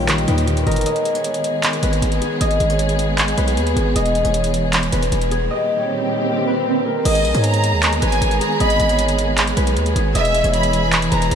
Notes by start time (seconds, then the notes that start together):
Already playing: A#1 A#2 D#3 G3 G4 G#4 B4 C#5 D#5
0.08 D#3, clap, closed hi-hat
0.18 closed hi-hat
0.28 D#2 D#4 B4, closed hi-hat
0.38 closed hi-hat
0.47 D#3, closed hi-hat
0.57 closed hi-hat
0.67 G1 A#4 D#5, closed hi-hat
0.71 closed hi-hat
0.76 closed hi-hat
0.81 closed hi-hat
0.86 D#3 G#3 B3 G#4 D#5, closed hi-hat
0.96 closed hi-hat
1.05 closed hi-hat
1.15 C#5, closed hi-hat
1.24 closed hi-hat
1.34 closed hi-hat
1.44 closed hi-hat
1.63 clap, closed hi-hat
1.73 closed hi-hat
1.83 G#1 B4, closed hi-hat
1.93 closed hi-hat
2.02 G#1, closed hi-hat
2.12 closed hi-hat
2.22 G#4, closed hi-hat
2.41 G#1 D#5, closed hi-hat
2.51 closed hi-hat
2.60 G#1, closed hi-hat
2.70 C#5, closed hi-hat
2.79 closed hi-hat
2.89 closed hi-hat
2.99 closed hi-hat
3.18 clap, closed hi-hat
3.28 closed hi-hat
3.38 B1 B4, closed hi-hat
3.48 closed hi-hat
3.57 D#2, closed hi-hat
3.67 closed hi-hat
3.76 G#1 G#4, closed hi-hat
3.96 E1 E3 D#5, closed hi-hat
4.06 closed hi-hat
4.15 closed hi-hat
4.25 E1 C#5, closed hi-hat
4.34 closed hi-hat
4.44 closed hi-hat
4.54 closed hi-hat
4.73 clap, closed hi-hat
4.83 closed hi-hat
4.92 E1 B4, closed hi-hat
5.03 closed hi-hat
5.12 E1, closed hi-hat
5.21 closed hi-hat
5.31 G#4, closed hi-hat
5.51 A#2 D#3 G3 G4 D#5, swell
5.79 C#5
6.47 B4
6.86 A#4
7.05 G#1 D#3 G#3 B3 G#4 D#5, closed hi-hat, crash
7.15 closed hi-hat
7.25 A#1, closed hi-hat
7.34 G#2 C#5, closed hi-hat
7.44 A#5, closed hi-hat
7.54 closed hi-hat
7.64 closed hi-hat
7.73 D#2
7.83 clap, closed hi-hat
7.93 closed hi-hat
8.02 G#1 B4 G#5, closed hi-hat
8.12 closed hi-hat
8.21 G#1, closed hi-hat
8.31 closed hi-hat
8.41 G#4 A#5, closed hi-hat
8.60 G#1 D#5 B5, closed hi-hat
8.70 closed hi-hat
8.80 G#1, closed hi-hat
8.89 C#5, closed hi-hat
8.99 closed hi-hat
9.08 closed hi-hat
9.18 closed hi-hat
9.38 clap, closed hi-hat
9.47 closed hi-hat
9.57 B1 B4, closed hi-hat
9.67 closed hi-hat
9.76 D#2, closed hi-hat
9.86 closed hi-hat
9.95 G#1 G#4, closed hi-hat
10.15 E1 E3 G#4 D#5 E5, closed hi-hat
10.25 closed hi-hat
10.34 closed hi-hat
10.44 E1 C#5, closed hi-hat
10.54 B5, closed hi-hat
10.63 closed hi-hat
10.73 closed hi-hat
10.92 clap, closed hi-hat
11.02 closed hi-hat
11.11 E1 B4 A#5, closed hi-hat
11.22 closed hi-hat
11.31 E1, closed hi-hat